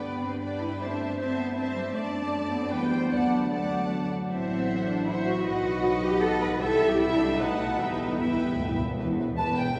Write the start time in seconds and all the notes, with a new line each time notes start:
Already playing: G2 G3 B3 D4 B4 D5 G5
0.22 C4
0.41 D4 B4 D5 G5
0.61 E4
0.80 A3 C4 D4 C5 E5 A5
1.18 C4 C5 E5 A5
1.38 B3
1.55 C4 C5 E5 A5
1.76 G3
1.93 F#2 A3 D4 D5 A5
2.52 B3
2.62 C4
2.71 E2 G3 B3 B4 G5
2.91 G3 C5
3.11 D2 F#3 B3 D4 D5 F#5 A5
3.50 A3 D5 F#5 A5
4.29 A1 C4 E4 C5 E5 F#5
4.87 D4
5.07 E4 C5 E5 F#5
5.26 F#4
5.45 B1 F#3 D#4 F#4 B4 D#5 F#5
6.03 G4
6.23 A4
6.42 B4
6.61 C2 G3 E4 A4 E5 G5
6.91 G4
6.99 E4 E5 G5
7.20 D4
7.38 B1 A3 D#4 F#4 B4 F#5 A5
7.78 E2 G3 D#4 G4 B4 E5 G5
7.87 E2
7.95 E2
8.03 E2
8.11 E2
8.18 E2 B3 E4 B4 E5 G5
8.25 E2
8.33 E2
8.40 E2 G3
8.48 E2
8.56 E2 A3
8.63 E2
8.71 E2
8.78 E2 B3
8.86 E2
8.98 E1 E2 B4
9.20 B4
9.37 E1 E2 B4 A5
9.57 B4 G5
9.77 E2